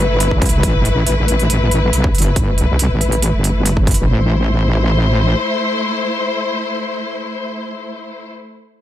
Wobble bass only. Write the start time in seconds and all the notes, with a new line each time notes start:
Already playing: G1
0.31 C2
0.63 A1
1.06 A1
1.93 B1
2.14 G1
2.58 C2
2.90 A1
3.34 G1
3.98 A1
4.09 A1